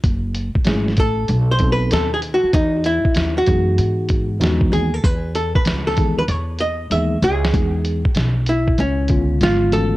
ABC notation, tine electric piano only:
X:1
M:4/4
L:1/8
Q:"Swing 16ths" 1/4=96
K:E
V:1 name="Tine electric piano"
z2 [F,A,CEG] z2 [F,B,=CDA] z2 | z3 [E,G,B,DG]3 [E,G,B,DF] z | z3 [E,G,B,DG] z2 [E,G,B,DG] z | [E,G,B,DG] z4 [=D,G,B,C^E]2 [=E,A,B,CF] |]